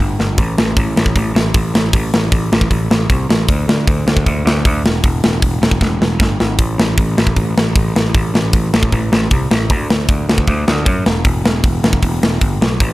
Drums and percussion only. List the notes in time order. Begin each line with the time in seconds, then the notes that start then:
0.20 snare
0.38 kick, open hi-hat
0.58 snare
0.77 kick, open hi-hat
0.97 snare
1.06 kick
1.16 kick, open hi-hat
1.36 snare
1.54 kick, open hi-hat
1.75 snare
1.93 kick, open hi-hat
2.14 snare
2.32 kick, open hi-hat
2.53 snare
2.61 kick
2.71 kick, open hi-hat
2.91 snare
3.10 kick, open hi-hat
3.30 snare
3.48 kick, open hi-hat
3.69 snare
3.87 kick, open hi-hat
4.08 snare
4.17 kick
4.26 kick, open hi-hat
4.47 snare
4.65 kick, open hi-hat
4.86 snare
5.04 kick, open hi-hat
5.24 snare
5.42 kick, open hi-hat
5.63 snare
5.71 kick
5.81 kick, snare
6.02 snare
6.20 kick, snare
6.40 snare
6.59 kick, open hi-hat
6.80 snare
6.98 kick, open hi-hat
7.18 snare
7.27 kick
7.36 kick, open hi-hat
7.58 snare
7.76 kick, open hi-hat
7.96 snare
8.14 kick, open hi-hat
8.35 snare
8.53 kick, open hi-hat
8.74 snare
8.83 kick
8.92 kick, open hi-hat
9.13 snare
9.31 kick, open hi-hat
9.51 snare
9.70 kick, open hi-hat
9.90 snare
10.08 kick, open hi-hat
10.29 snare
10.38 kick
10.47 kick, open hi-hat
10.68 snare
10.86 kick, open hi-hat
11.06 snare
11.25 kick, open hi-hat
11.45 snare
11.64 kick, open hi-hat
11.84 snare
11.93 kick
12.02 kick, open hi-hat
12.23 snare
12.41 kick, open hi-hat
12.62 snare
12.80 kick, open hi-hat